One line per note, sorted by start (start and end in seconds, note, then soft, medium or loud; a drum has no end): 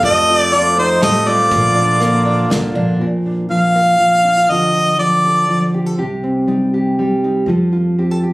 0.02 0.98 F2 loud
0.02 1.49 C3 medium
0.02 1.02 F3 medium
0.02 1.49 A3 medium
0.02 0.52 A3 medium
0.02 1.50 F4 medium
0.02 0.49 A4 medium
0.02 0.38 D#5 loud
0.02 kick medium
0.02 closed hi-hat soft
0.28 0.76 C4 medium
0.28 0.77 F4 medium
0.38 0.53 D5 loud
0.53 1.00 A3 medium
0.53 0.77 F4 medium
0.53 1.49 A4 medium
0.53 0.77 D5 loud
0.53 closed hi-hat soft
0.77 1.25 C4 medium
0.77 1.01 D#4 medium
0.77 2.51 F4 medium
0.77 1.01 C5 medium
1.01 1.49 A2 medium
1.01 1.27 G3 medium
1.01 1.56 A3 medium
1.01 1.25 A4 medium
1.01 1.29 D#5 loud
1.01 snare medium
1.01 closed hi-hat soft
1.26 1.52 A3 medium
1.26 1.56 C4 medium
1.26 2.50 F4 medium
1.26 2.51 D5 medium
1.51 2.46 A#1 loud
1.51 2.97 A#2 medium
1.51 2.98 D3 medium
1.51 3.00 F3 medium
1.51 2.99 A#3 medium
1.51 2.98 F4 medium
1.51 kick medium
1.51 closed hi-hat soft
1.75 2.24 D4 medium
1.75 2.25 D4 medium
2.00 2.49 A#3 medium
2.00 2.97 A#4 medium
2.00 closed hi-hat medium
2.25 2.74 D4 medium
2.25 2.97 D4 medium
2.50 2.72 C2 medium
2.50 3.05 A#3 medium
2.50 2.97 F4 medium
2.50 snare medium
2.50 closed hi-hat medium
2.75 2.97 A#1 medium
2.75 3.48 F3 medium
2.75 3.05 D4 medium
3.00 4.46 A#2 medium
3.00 3.74 A#4 medium
3.26 4.23 D4 soft
3.50 3.98 F3 medium
3.50 4.24 F4 soft
3.50 4.52 F5 medium
3.76 4.46 A#4 medium
3.99 4.49 F3 medium
4.24 4.37 D4 medium
4.37 4.49 F4 soft
4.50 5.95 D3 medium
4.50 4.97 F3 soft
4.50 4.74 F4 soft
4.50 4.98 A4 medium
4.50 4.99 D#5 medium
4.75 5.96 F4 soft
4.98 5.48 F3 medium
4.98 5.23 A4 medium
4.98 5.69 D5 medium
5.25 5.74 A4 medium
5.49 5.98 F3 medium
5.74 5.86 G4 medium
5.86 5.98 A4 soft
5.98 6.93 C2 medium
5.98 7.47 C3 medium
5.98 6.73 G4 medium
6.24 7.45 C4 soft
6.47 6.97 G3 medium
6.47 7.22 D#4 medium
6.74 7.48 G4 medium
6.99 7.45 G3 medium
7.24 7.45 D#4 soft
7.46 8.33 F2 medium
7.46 8.33 F3 medium
7.46 7.97 C4 medium
7.46 7.71 F4 medium
7.46 7.98 A4 medium
7.73 8.33 F4 medium
7.98 8.33 C4 medium
7.98 8.11 G4 medium
8.11 8.23 A4 soft
8.23 8.33 G4 medium